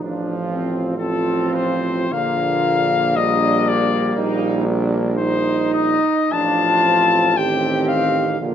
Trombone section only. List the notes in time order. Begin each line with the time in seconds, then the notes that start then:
0.02 D4
0.48 C4
0.98 C4
2.12 A#3
5.19 D#4
6.32 D4
6.86 C4
7.38 C4
8.40 A#3